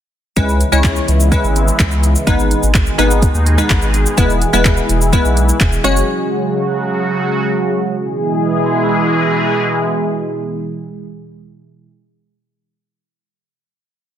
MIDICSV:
0, 0, Header, 1, 5, 480
1, 0, Start_track
1, 0, Key_signature, 4, "major"
1, 0, Tempo, 476190
1, 370, Time_signature, 4, 2, 24, 8
1, 14288, End_track
2, 0, Start_track
2, 0, Title_t, "Synth stab"
2, 0, Program_c, 0, 62
2, 367, Note_on_c, 0, 56, 86
2, 369, Note_on_c, 0, 61, 80
2, 371, Note_on_c, 0, 64, 76
2, 373, Note_on_c, 0, 71, 92
2, 600, Note_off_c, 0, 56, 0
2, 601, Note_off_c, 0, 61, 0
2, 602, Note_off_c, 0, 64, 0
2, 603, Note_off_c, 0, 71, 0
2, 727, Note_on_c, 0, 56, 84
2, 728, Note_on_c, 0, 61, 80
2, 730, Note_on_c, 0, 64, 79
2, 732, Note_on_c, 0, 73, 92
2, 1114, Note_off_c, 0, 56, 0
2, 1115, Note_off_c, 0, 61, 0
2, 1116, Note_off_c, 0, 64, 0
2, 1117, Note_off_c, 0, 73, 0
2, 1327, Note_on_c, 0, 56, 85
2, 1328, Note_on_c, 0, 61, 77
2, 1330, Note_on_c, 0, 64, 79
2, 1332, Note_on_c, 0, 71, 92
2, 1946, Note_off_c, 0, 56, 0
2, 1946, Note_off_c, 0, 61, 0
2, 1947, Note_off_c, 0, 64, 0
2, 1948, Note_off_c, 0, 71, 0
2, 2287, Note_on_c, 0, 56, 86
2, 2289, Note_on_c, 0, 59, 78
2, 2290, Note_on_c, 0, 63, 84
2, 2292, Note_on_c, 0, 71, 93
2, 2751, Note_off_c, 0, 56, 0
2, 2752, Note_off_c, 0, 59, 0
2, 2753, Note_off_c, 0, 63, 0
2, 2754, Note_off_c, 0, 71, 0
2, 3007, Note_on_c, 0, 56, 85
2, 3009, Note_on_c, 0, 59, 82
2, 3010, Note_on_c, 0, 63, 81
2, 3012, Note_on_c, 0, 71, 99
2, 3394, Note_off_c, 0, 56, 0
2, 3395, Note_off_c, 0, 59, 0
2, 3396, Note_off_c, 0, 63, 0
2, 3397, Note_off_c, 0, 71, 0
2, 3608, Note_on_c, 0, 56, 88
2, 3610, Note_on_c, 0, 59, 77
2, 3611, Note_on_c, 0, 63, 77
2, 3613, Note_on_c, 0, 71, 96
2, 3995, Note_off_c, 0, 56, 0
2, 3996, Note_off_c, 0, 59, 0
2, 3996, Note_off_c, 0, 63, 0
2, 3997, Note_off_c, 0, 71, 0
2, 4207, Note_on_c, 0, 56, 89
2, 4208, Note_on_c, 0, 59, 83
2, 4210, Note_on_c, 0, 64, 83
2, 4212, Note_on_c, 0, 71, 97
2, 4440, Note_off_c, 0, 56, 0
2, 4441, Note_off_c, 0, 59, 0
2, 4442, Note_off_c, 0, 64, 0
2, 4442, Note_off_c, 0, 71, 0
2, 4568, Note_on_c, 0, 56, 87
2, 4569, Note_on_c, 0, 59, 80
2, 4571, Note_on_c, 0, 64, 77
2, 4572, Note_on_c, 0, 71, 100
2, 4955, Note_off_c, 0, 56, 0
2, 4955, Note_off_c, 0, 59, 0
2, 4956, Note_off_c, 0, 64, 0
2, 4957, Note_off_c, 0, 71, 0
2, 5166, Note_on_c, 0, 56, 87
2, 5169, Note_on_c, 0, 59, 79
2, 5170, Note_on_c, 0, 64, 80
2, 5172, Note_on_c, 0, 71, 96
2, 5785, Note_off_c, 0, 56, 0
2, 5787, Note_off_c, 0, 59, 0
2, 5787, Note_off_c, 0, 64, 0
2, 5788, Note_off_c, 0, 71, 0
2, 5886, Note_on_c, 0, 56, 93
2, 5888, Note_on_c, 0, 61, 88
2, 5890, Note_on_c, 0, 66, 81
2, 5891, Note_on_c, 0, 73, 106
2, 6080, Note_off_c, 0, 56, 0
2, 6081, Note_off_c, 0, 61, 0
2, 6082, Note_off_c, 0, 66, 0
2, 6083, Note_off_c, 0, 73, 0
2, 14288, End_track
3, 0, Start_track
3, 0, Title_t, "Analog synth pad"
3, 0, Program_c, 1, 89
3, 371, Note_on_c, 1, 49, 88
3, 371, Note_on_c, 1, 56, 80
3, 371, Note_on_c, 1, 59, 80
3, 371, Note_on_c, 1, 64, 97
3, 372, Note_on_c, 1, 52, 82
3, 2271, Note_off_c, 1, 56, 0
3, 2271, Note_off_c, 1, 64, 0
3, 2272, Note_off_c, 1, 49, 0
3, 2272, Note_off_c, 1, 52, 0
3, 2272, Note_off_c, 1, 59, 0
3, 2290, Note_on_c, 1, 56, 78
3, 2291, Note_on_c, 1, 47, 85
3, 2291, Note_on_c, 1, 51, 83
3, 2291, Note_on_c, 1, 63, 81
3, 2291, Note_on_c, 1, 68, 100
3, 4191, Note_off_c, 1, 51, 0
3, 4191, Note_off_c, 1, 63, 0
3, 4211, Note_on_c, 1, 52, 80
3, 4211, Note_on_c, 1, 64, 84
3, 5854, Note_off_c, 1, 47, 0
3, 5874, Note_off_c, 1, 52, 0
3, 5874, Note_off_c, 1, 64, 0
3, 5890, Note_on_c, 1, 49, 80
3, 5890, Note_on_c, 1, 54, 71
3, 5890, Note_on_c, 1, 66, 77
3, 8010, Note_off_c, 1, 56, 0
3, 8010, Note_off_c, 1, 68, 0
3, 8028, Note_off_c, 1, 49, 0
3, 8028, Note_off_c, 1, 54, 0
3, 8029, Note_off_c, 1, 66, 0
3, 8048, Note_on_c, 1, 52, 81
3, 8049, Note_on_c, 1, 47, 87
3, 8049, Note_on_c, 1, 56, 83
3, 8049, Note_on_c, 1, 64, 84
3, 8049, Note_on_c, 1, 68, 101
3, 11962, Note_off_c, 1, 52, 0
3, 11962, Note_off_c, 1, 64, 0
3, 11962, Note_off_c, 1, 68, 0
3, 11963, Note_off_c, 1, 47, 0
3, 11963, Note_off_c, 1, 56, 0
3, 14288, End_track
4, 0, Start_track
4, 0, Title_t, "Sub bass"
4, 0, Program_c, 2, 38
4, 371, Note_on_c, 2, 37, 107
4, 642, Note_off_c, 2, 37, 0
4, 731, Note_on_c, 2, 37, 93
4, 1002, Note_off_c, 2, 37, 0
4, 1091, Note_on_c, 2, 37, 96
4, 1362, Note_off_c, 2, 37, 0
4, 1451, Note_on_c, 2, 32, 88
4, 1722, Note_off_c, 2, 32, 0
4, 1811, Note_on_c, 2, 37, 93
4, 2172, Note_off_c, 2, 37, 0
4, 2291, Note_on_c, 2, 32, 109
4, 2562, Note_off_c, 2, 32, 0
4, 2651, Note_on_c, 2, 32, 87
4, 2922, Note_off_c, 2, 32, 0
4, 3011, Note_on_c, 2, 32, 103
4, 3282, Note_off_c, 2, 32, 0
4, 3371, Note_on_c, 2, 39, 89
4, 3642, Note_off_c, 2, 39, 0
4, 3732, Note_on_c, 2, 32, 93
4, 4093, Note_off_c, 2, 32, 0
4, 4211, Note_on_c, 2, 28, 108
4, 4482, Note_off_c, 2, 28, 0
4, 4571, Note_on_c, 2, 28, 85
4, 4842, Note_off_c, 2, 28, 0
4, 4931, Note_on_c, 2, 28, 101
4, 5202, Note_off_c, 2, 28, 0
4, 5290, Note_on_c, 2, 35, 86
4, 5561, Note_off_c, 2, 35, 0
4, 5651, Note_on_c, 2, 28, 95
4, 5831, Note_off_c, 2, 28, 0
4, 5890, Note_on_c, 2, 30, 97
4, 6071, Note_off_c, 2, 30, 0
4, 14288, End_track
5, 0, Start_track
5, 0, Title_t, "Drums"
5, 371, Note_on_c, 9, 36, 106
5, 371, Note_on_c, 9, 42, 75
5, 371, Note_on_c, 9, 82, 79
5, 471, Note_off_c, 9, 42, 0
5, 471, Note_off_c, 9, 82, 0
5, 472, Note_off_c, 9, 36, 0
5, 492, Note_on_c, 9, 82, 53
5, 593, Note_off_c, 9, 82, 0
5, 611, Note_on_c, 9, 42, 46
5, 611, Note_on_c, 9, 82, 46
5, 712, Note_off_c, 9, 42, 0
5, 712, Note_off_c, 9, 82, 0
5, 731, Note_on_c, 9, 82, 61
5, 832, Note_off_c, 9, 82, 0
5, 847, Note_on_c, 9, 39, 102
5, 849, Note_on_c, 9, 36, 116
5, 852, Note_on_c, 9, 42, 71
5, 852, Note_on_c, 9, 82, 75
5, 948, Note_off_c, 9, 39, 0
5, 950, Note_off_c, 9, 36, 0
5, 952, Note_off_c, 9, 42, 0
5, 952, Note_off_c, 9, 82, 0
5, 969, Note_on_c, 9, 82, 55
5, 1070, Note_off_c, 9, 82, 0
5, 1092, Note_on_c, 9, 42, 50
5, 1092, Note_on_c, 9, 82, 50
5, 1193, Note_off_c, 9, 42, 0
5, 1193, Note_off_c, 9, 82, 0
5, 1212, Note_on_c, 9, 82, 76
5, 1313, Note_off_c, 9, 82, 0
5, 1329, Note_on_c, 9, 36, 111
5, 1331, Note_on_c, 9, 42, 77
5, 1331, Note_on_c, 9, 82, 75
5, 1430, Note_off_c, 9, 36, 0
5, 1431, Note_off_c, 9, 42, 0
5, 1431, Note_off_c, 9, 82, 0
5, 1453, Note_on_c, 9, 82, 46
5, 1554, Note_off_c, 9, 82, 0
5, 1572, Note_on_c, 9, 42, 55
5, 1572, Note_on_c, 9, 82, 54
5, 1673, Note_off_c, 9, 42, 0
5, 1673, Note_off_c, 9, 82, 0
5, 1693, Note_on_c, 9, 82, 80
5, 1794, Note_off_c, 9, 82, 0
5, 1810, Note_on_c, 9, 39, 101
5, 1811, Note_on_c, 9, 36, 102
5, 1811, Note_on_c, 9, 42, 71
5, 1811, Note_on_c, 9, 82, 72
5, 1911, Note_off_c, 9, 39, 0
5, 1912, Note_off_c, 9, 36, 0
5, 1912, Note_off_c, 9, 42, 0
5, 1912, Note_off_c, 9, 82, 0
5, 1928, Note_on_c, 9, 82, 48
5, 2029, Note_off_c, 9, 82, 0
5, 2051, Note_on_c, 9, 42, 49
5, 2051, Note_on_c, 9, 82, 51
5, 2151, Note_off_c, 9, 42, 0
5, 2151, Note_off_c, 9, 82, 0
5, 2172, Note_on_c, 9, 82, 76
5, 2273, Note_off_c, 9, 82, 0
5, 2291, Note_on_c, 9, 36, 108
5, 2291, Note_on_c, 9, 42, 80
5, 2291, Note_on_c, 9, 82, 80
5, 2391, Note_off_c, 9, 42, 0
5, 2391, Note_off_c, 9, 82, 0
5, 2392, Note_off_c, 9, 36, 0
5, 2412, Note_on_c, 9, 82, 53
5, 2513, Note_off_c, 9, 82, 0
5, 2531, Note_on_c, 9, 42, 46
5, 2531, Note_on_c, 9, 82, 46
5, 2632, Note_off_c, 9, 42, 0
5, 2632, Note_off_c, 9, 82, 0
5, 2652, Note_on_c, 9, 82, 62
5, 2752, Note_off_c, 9, 82, 0
5, 2767, Note_on_c, 9, 39, 104
5, 2769, Note_on_c, 9, 36, 120
5, 2772, Note_on_c, 9, 42, 72
5, 2772, Note_on_c, 9, 82, 73
5, 2868, Note_off_c, 9, 39, 0
5, 2870, Note_off_c, 9, 36, 0
5, 2872, Note_off_c, 9, 42, 0
5, 2872, Note_off_c, 9, 82, 0
5, 2889, Note_on_c, 9, 82, 57
5, 2989, Note_off_c, 9, 82, 0
5, 3012, Note_on_c, 9, 42, 52
5, 3012, Note_on_c, 9, 82, 52
5, 3113, Note_off_c, 9, 42, 0
5, 3113, Note_off_c, 9, 82, 0
5, 3132, Note_on_c, 9, 82, 78
5, 3233, Note_off_c, 9, 82, 0
5, 3250, Note_on_c, 9, 36, 105
5, 3251, Note_on_c, 9, 42, 83
5, 3251, Note_on_c, 9, 82, 77
5, 3350, Note_off_c, 9, 36, 0
5, 3352, Note_off_c, 9, 42, 0
5, 3352, Note_off_c, 9, 82, 0
5, 3373, Note_on_c, 9, 82, 47
5, 3474, Note_off_c, 9, 82, 0
5, 3492, Note_on_c, 9, 42, 55
5, 3492, Note_on_c, 9, 82, 52
5, 3593, Note_off_c, 9, 42, 0
5, 3593, Note_off_c, 9, 82, 0
5, 3613, Note_on_c, 9, 82, 80
5, 3714, Note_off_c, 9, 82, 0
5, 3730, Note_on_c, 9, 39, 110
5, 3731, Note_on_c, 9, 42, 69
5, 3731, Note_on_c, 9, 82, 70
5, 3732, Note_on_c, 9, 36, 103
5, 3831, Note_off_c, 9, 39, 0
5, 3832, Note_off_c, 9, 36, 0
5, 3832, Note_off_c, 9, 42, 0
5, 3832, Note_off_c, 9, 82, 0
5, 3849, Note_on_c, 9, 82, 49
5, 3949, Note_off_c, 9, 82, 0
5, 3971, Note_on_c, 9, 42, 50
5, 3971, Note_on_c, 9, 82, 49
5, 4072, Note_off_c, 9, 42, 0
5, 4072, Note_off_c, 9, 82, 0
5, 4093, Note_on_c, 9, 82, 74
5, 4194, Note_off_c, 9, 82, 0
5, 4211, Note_on_c, 9, 36, 108
5, 4211, Note_on_c, 9, 42, 79
5, 4211, Note_on_c, 9, 82, 80
5, 4312, Note_off_c, 9, 36, 0
5, 4312, Note_off_c, 9, 42, 0
5, 4312, Note_off_c, 9, 82, 0
5, 4333, Note_on_c, 9, 82, 54
5, 4434, Note_off_c, 9, 82, 0
5, 4451, Note_on_c, 9, 42, 48
5, 4451, Note_on_c, 9, 82, 46
5, 4552, Note_off_c, 9, 42, 0
5, 4552, Note_off_c, 9, 82, 0
5, 4572, Note_on_c, 9, 82, 63
5, 4673, Note_off_c, 9, 82, 0
5, 4688, Note_on_c, 9, 39, 104
5, 4690, Note_on_c, 9, 36, 110
5, 4692, Note_on_c, 9, 42, 72
5, 4692, Note_on_c, 9, 82, 70
5, 4789, Note_off_c, 9, 39, 0
5, 4790, Note_off_c, 9, 36, 0
5, 4793, Note_off_c, 9, 42, 0
5, 4793, Note_off_c, 9, 82, 0
5, 4809, Note_on_c, 9, 82, 55
5, 4910, Note_off_c, 9, 82, 0
5, 4933, Note_on_c, 9, 42, 52
5, 4933, Note_on_c, 9, 82, 52
5, 5034, Note_off_c, 9, 42, 0
5, 5034, Note_off_c, 9, 82, 0
5, 5053, Note_on_c, 9, 82, 76
5, 5153, Note_off_c, 9, 82, 0
5, 5169, Note_on_c, 9, 36, 110
5, 5171, Note_on_c, 9, 42, 79
5, 5171, Note_on_c, 9, 82, 80
5, 5270, Note_off_c, 9, 36, 0
5, 5272, Note_off_c, 9, 42, 0
5, 5272, Note_off_c, 9, 82, 0
5, 5293, Note_on_c, 9, 82, 48
5, 5394, Note_off_c, 9, 82, 0
5, 5412, Note_on_c, 9, 42, 53
5, 5412, Note_on_c, 9, 82, 55
5, 5513, Note_off_c, 9, 42, 0
5, 5513, Note_off_c, 9, 82, 0
5, 5533, Note_on_c, 9, 82, 82
5, 5634, Note_off_c, 9, 82, 0
5, 5650, Note_on_c, 9, 39, 107
5, 5651, Note_on_c, 9, 36, 103
5, 5651, Note_on_c, 9, 42, 73
5, 5651, Note_on_c, 9, 82, 69
5, 5751, Note_off_c, 9, 39, 0
5, 5752, Note_off_c, 9, 36, 0
5, 5752, Note_off_c, 9, 42, 0
5, 5752, Note_off_c, 9, 82, 0
5, 5769, Note_on_c, 9, 82, 49
5, 5870, Note_off_c, 9, 82, 0
5, 5891, Note_on_c, 9, 42, 50
5, 5891, Note_on_c, 9, 82, 51
5, 5992, Note_off_c, 9, 42, 0
5, 5992, Note_off_c, 9, 82, 0
5, 6013, Note_on_c, 9, 82, 76
5, 6114, Note_off_c, 9, 82, 0
5, 14288, End_track
0, 0, End_of_file